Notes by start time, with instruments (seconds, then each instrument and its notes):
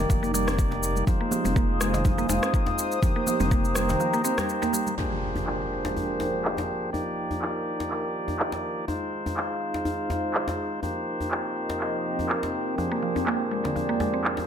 Already playing: tonewheel organ A#3 D#4 G4 D5, analog synth pad D#4 A#4 G5 D6
0.09 analog synth bass F1, synth pluck F3, kick, high conga, shaker
0.23 synth pluck A#3, shaker
0.34 synth pluck G3, tonewheel organ A#3 D#4 G4 D5, muted conga, shaker
0.48 synth pluck C4, cross-stick, djembe tone, shaker
0.59 kick, shaker
0.71 muted conga, djembe slap
0.83 shaker
0.95 low conga, shaker
1.07 synth pluck F3, tonewheel organ G#3 D#4 F4 C5, analog synth pad C5 F5 G#5 D#6, kick, muted conga, djembe tone, shaker
1.21 synth pluck A#3
1.31 synth pluck F3, high conga, shaker
1.44 analog synth bass F1, synth pluck C4, muted conga, high conga, djembe tone, low conga, shaker
1.56 synth pluck A#3, kick, shaker
1.80 synth pluck G#3, cross-stick, high conga, shaker
1.94 synth pluck D#3, djembe slap, muted conga, shaker
2.04 synth pluck F3, kick, high conga, djembe tone, low conga, shaker
2.18 synth pluck A#3, shaker
2.29 analog synth bass F1, tonewheel organ G#3 D#4 F4 C5, synth pluck G#3, djembe slap, muted conga, djembe tone, shaker
2.43 synth pluck C4, cross-stick, shaker
2.54 kick, shaker
2.66 muted conga, djembe slap, djembe tone
2.78 shaker
2.92 shaker
3.02 synth pluck F3, tonewheel organ A#3 D#4 G4 C5, analog synth pad G5 A#5, kick, muted conga, djembe tone, shaker
3.16 synth pluck A#3
3.27 synth pluck F3, high conga, shaker
3.40 analog synth bass F1, synth pluck C4, muted conga, djembe tone, low conga, shaker
3.51 synth pluck A#3, kick, shaker
3.65 shaker
3.74 synth pluck G3, cross-stick, high conga, shaker
3.89 synth pluck D#3, muted conga, djembe slap, shaker
3.99 synth pluck F3, high conga, shaker
4.14 synth pluck A#3, shaker
4.24 tonewheel organ A#3 D#4 G4 C5, synth pluck C4, muted conga, shaker
4.38 synth pluck G3, cross-stick, djembe tone, shaker
4.49 shaker
4.62 synth pluck A#3, muted conga, djembe slap, shaker
4.73 synth pluck G3, shaker
4.87 low conga, shaker
4.98 analog synth pad F3 G#3 D4 A#4 C5 G5, tonewheel organ F3 A#3 D4 G4 G#4 C5, impact, djembe tone
5.36 djembe tone
5.46 clap
5.85 djembe slap
5.96 djembe tone
6.20 djembe slap, djembe tone
6.44 clap
6.57 djembe slap, djembe tone
6.93 tonewheel organ F3 A#3 D#4 G4 D5, analog synth pad D#4 A#4 D5, djembe tone
7.18 shaker
7.31 djembe tone
7.42 clap
7.66 shaker
7.80 djembe slap
7.91 clap
8.04 shaker
8.15 shaker
8.28 djembe tone
8.39 clap
8.52 djembe slap
8.77 shaker
8.88 tonewheel organ G#3 D#4 F4 C5, analog synth pad G#4 C5 F5, djembe tone
9.13 shaker
9.26 djembe tone
9.37 clap
9.61 shaker
9.74 djembe slap
9.85 djembe tone
10.10 djembe slap, djembe tone
10.34 clap, shaker
10.48 djembe slap, djembe tone
10.58 shaker
10.72 shaker
10.83 tonewheel organ F3 A#3 D#4 G4 C5, analog synth pad F3 C4 A#4 D#5 G5, djembe tone
11.07 shaker
11.21 djembe tone
11.31 clap, shaker
11.56 shaker
11.70 djembe slap
11.80 clap
11.94 shaker
12.05 shaker
12.18 djembe tone, shaker
12.29 clap, shaker
12.43 djembe slap
12.54 shaker
12.67 shaker
12.78 analog synth pad F2 G#3 D5, tonewheel organ F3 A#3 D4 G4 G#4 C5, synth pluck F3, djembe tone
12.92 synth pluck A#3
13.02 synth pluck F3, shaker
13.16 synth pluck C4, djembe tone
13.27 synth pluck A#3, clap, shaker
13.51 synth pluck G#3, shaker
13.65 synth pluck D3, djembe slap
13.76 synth pluck F3, djembe tone
13.89 synth pluck A#3
14.00 synth pluck G#3, djembe slap, djembe tone
14.14 synth pluck C4
14.24 clap, shaker
14.37 djembe slap, djembe tone